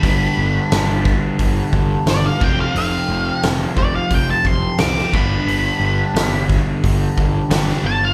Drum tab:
HH |o---o---o---o---|o---o---o---o---|o---o---o---o---|
SD |----o-o-----o---|----o-------oo--|----o-o-----oo--|
BD |o-----o-o-o---o-|------o-o-o---o-|------o-o-o-----|